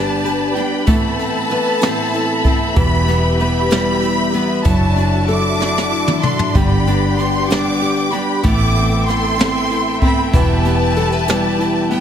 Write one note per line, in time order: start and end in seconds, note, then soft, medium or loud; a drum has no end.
0.00 0.87 G1 loud
0.00 0.57 G2 medium
0.00 0.56 D3 medium
0.00 0.56 G3 medium
0.00 0.87 G3 medium
0.00 0.56 B3 medium
0.00 0.55 D4 medium
0.00 0.56 D4 medium
0.00 0.53 G4 medium
0.00 0.86 G4 medium
0.00 0.86 B4 medium
0.00 1.22 B4 medium
0.00 0.84 D5 medium
0.00 0.56 A5 loud
0.00 4.62 B5 medium
0.24 0.94 G4 medium
0.24 closed hi-hat medium
0.54 0.87 G3 soft
0.54 0.87 B3 medium
0.54 0.88 D4 medium
0.54 0.94 D4 medium
0.54 0.87 G4 medium
0.54 0.88 G5 medium
0.54 closed hi-hat soft
0.86 1.50 A2 medium
0.86 1.49 E3 medium
0.86 2.76 A3 medium
0.86 1.52 B3 medium
0.86 1.50 C4 loud
0.86 1.52 E4 medium
0.86 2.75 A4 medium
0.86 2.75 B4 medium
0.86 6.51 E5 medium
0.86 2.73 A5 loud
0.86 kick loud
0.86 closed hi-hat medium
1.19 1.82 C4 medium
1.19 closed hi-hat medium
1.49 1.81 E3 medium
1.49 1.80 B3 medium
1.49 1.81 C4 medium
1.49 1.80 E4 medium
1.49 2.83 B4 medium
1.49 closed hi-hat medium
1.81 2.46 A2 medium
1.81 2.75 E3 medium
1.81 2.45 B3 medium
1.81 2.45 C4 medium
1.81 2.44 C4 medium
1.81 2.43 E4 medium
1.81 snare loud
1.81 closed hi-hat medium
2.14 4.02 E4 medium
2.14 closed hi-hat medium
2.44 2.75 B3 medium
2.44 2.83 C4 medium
2.44 2.76 C4 soft
2.44 2.76 E4 medium
2.44 kick medium
2.44 closed hi-hat soft
2.75 4.62 E1 loud
2.75 3.39 E2 loud
2.75 3.39 B2 medium
2.75 3.37 E3 medium
2.75 4.66 E3 medium
2.75 3.38 G3 medium
2.75 3.39 B3 loud
2.75 3.41 E4 medium
2.75 4.64 G4 medium
2.75 4.64 B4 medium
2.75 3.36 B5 loud
2.75 kick loud
2.75 closed hi-hat medium
3.08 4.33 B3 medium
3.08 closed hi-hat medium
3.38 3.70 E3 medium
3.38 3.69 G3 medium
3.38 3.69 B3 medium
3.38 3.68 E4 medium
3.38 4.73 B4 medium
3.38 4.62 B5 loud
3.38 closed hi-hat medium
3.69 4.35 E2 medium
3.69 4.34 B2 medium
3.69 4.35 E3 medium
3.69 4.34 G3 medium
3.69 4.65 G3 medium
3.69 4.33 B3 medium
3.69 4.32 E4 medium
3.69 snare loud
3.69 closed hi-hat medium
4.02 4.72 E4 medium
4.02 closed hi-hat medium
4.32 4.64 E3 soft
4.32 4.65 G3 soft
4.32 4.66 B3 soft
4.32 4.72 B3 medium
4.32 4.65 E4 medium
4.32 closed hi-hat medium
4.64 6.51 F#1 loud
4.64 5.26 F#3 medium
4.64 6.54 F#3 medium
4.64 5.27 A3 medium
4.64 5.28 D4 medium
4.64 5.29 E4 medium
4.64 6.53 F#4 medium
4.64 8.40 D5 medium
4.64 6.53 A5 medium
4.64 5.29 A5 loud
4.64 kick loud
4.64 closed hi-hat medium
4.96 5.60 D4 medium
4.96 closed hi-hat medium
5.27 5.59 F#3 medium
5.27 5.59 A3 medium
5.27 5.59 D4 medium
5.27 5.58 E4 medium
5.27 6.61 A4 medium
5.27 6.20 D6 loud
5.27 closed hi-hat soft
5.59 6.24 F#3 medium
5.59 6.23 A3 medium
5.59 6.23 D4 medium
5.59 6.21 E4 medium
5.59 snare medium
5.78 snare medium
5.91 6.61 E4 medium
6.08 mid tom medium
6.22 6.55 A3 soft
6.22 6.61 D4 medium
6.22 6.54 D4 soft
6.22 6.54 E4 medium
6.22 6.55 C6 loud
6.22 mid tom medium
6.39 floor tom medium
6.53 8.40 G1 loud
6.53 7.17 G2 medium
6.53 7.17 D3 medium
6.53 7.16 G3 medium
6.53 8.43 G3 medium
6.53 8.42 B3 medium
6.53 7.18 B3 medium
6.53 7.18 D4 medium
6.53 8.42 G4 medium
6.53 7.18 G4 medium
6.53 12.00 G5 medium
6.53 7.19 B5 loud
6.53 kick loud
6.53 closed hi-hat medium
6.87 7.49 D4 medium
6.87 closed hi-hat medium
7.17 7.49 G3 medium
7.17 7.49 B3 medium
7.17 7.48 D4 medium
7.17 7.47 G4 medium
7.17 7.50 C6 loud
7.17 closed hi-hat medium
7.49 8.13 G2 medium
7.49 8.13 D3 medium
7.49 8.13 G3 medium
7.49 8.13 B3 medium
7.49 8.11 D4 medium
7.49 8.10 G4 medium
7.49 8.13 D6 loud
7.49 snare loud
7.49 closed hi-hat medium
7.82 8.51 G4 medium
7.82 closed hi-hat soft
8.11 8.44 G3 soft
8.11 8.44 B3 soft
8.11 8.50 D4 medium
8.11 8.44 D4 medium
8.11 8.43 G4 medium
8.11 8.44 B5 loud
8.11 closed hi-hat medium
8.43 10.29 A1 loud
8.43 9.07 A2 medium
8.43 9.06 E3 loud
8.43 10.33 A3 medium
8.43 9.08 B3 medium
8.43 9.07 C4 medium
8.43 9.10 E4 medium
8.43 10.32 A4 medium
8.43 12.00 E5 medium
8.43 9.07 D6 loud
8.43 kick loud
8.43 closed hi-hat medium
8.76 9.38 C4 medium
8.76 closed hi-hat medium
9.07 9.38 E3 medium
9.07 9.38 B3 medium
9.07 9.39 C4 medium
9.07 9.38 E4 medium
9.07 9.97 C6 loud
9.07 snare soft
9.07 closed hi-hat medium
9.39 10.03 A2 medium
9.39 10.34 E3 medium
9.39 10.03 B3 medium
9.39 10.01 C4 medium
9.39 10.02 C4 medium
9.39 10.01 E4 medium
9.39 snare loud
9.39 closed hi-hat medium
9.70 11.58 E4 medium
9.70 closed hi-hat medium
10.01 10.34 B3 medium
10.01 10.39 C4 medium
10.01 10.34 C4 soft
10.01 10.33 E4 medium
10.01 10.34 B5 loud
10.01 kick medium
10.01 closed hi-hat soft
10.33 12.00 E1 loud
10.33 10.96 E2 loud
10.33 10.96 B2 loud
10.33 12.00 E3 medium
10.33 10.95 E3 loud
10.33 10.96 G3 medium
10.33 10.97 B3 loud
10.33 10.99 E4 loud
10.33 12.00 G4 medium
10.33 12.00 B4 medium
10.33 11.87 A5 loud
10.33 kick loud
10.33 closed hi-hat medium
10.65 11.90 B3 medium
10.65 closed hi-hat medium
10.96 11.28 E3 medium
10.96 11.28 G3 medium
10.96 11.27 B3 medium
10.96 11.27 E4 medium
10.96 11.12 A4 medium
10.96 closed hi-hat medium
11.12 12.00 B4 medium
11.28 11.92 E2 medium
11.28 11.92 B2 medium
11.28 11.94 E3 medium
11.28 12.00 G3 medium
11.28 11.91 G3 medium
11.28 11.91 B3 medium
11.28 11.90 E4 medium
11.28 snare loud
11.28 closed hi-hat medium
11.59 12.00 E4 medium
11.59 closed hi-hat medium
11.91 12.00 E3 medium
11.91 12.00 G3 medium
11.91 12.00 B3 medium
11.91 12.00 E4 medium
11.91 12.00 G5 medium
11.91 closed hi-hat medium